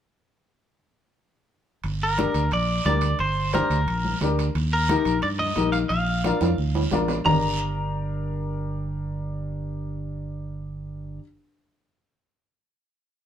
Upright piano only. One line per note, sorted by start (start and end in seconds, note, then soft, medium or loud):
2.18 2.42 D4 medium
2.18 2.42 G4 medium
2.18 2.42 A#4 medium
2.86 3.10 D4 medium
2.86 3.10 G4 medium
2.86 3.10 A#4 medium
3.54 3.77 D4 medium
3.54 3.77 G4 medium
3.54 3.77 C5 medium
4.22 4.45 D4 medium
4.22 4.46 G4 medium
4.22 4.46 A#4 medium
4.90 5.13 D#4 medium
4.90 5.13 G4 medium
4.90 5.13 A#4 medium
5.56 5.80 D#4 medium
5.56 5.80 G4 medium
5.56 5.81 A#4 medium
6.25 6.48 D4 medium
6.25 6.49 F4 medium
6.25 6.49 A#4 medium
6.92 7.16 D4 medium
6.92 7.16 F4 medium
6.92 7.17 A#4 medium
7.25 11.18 D4 medium
7.25 11.20 G4 medium
7.25 11.22 A#4 medium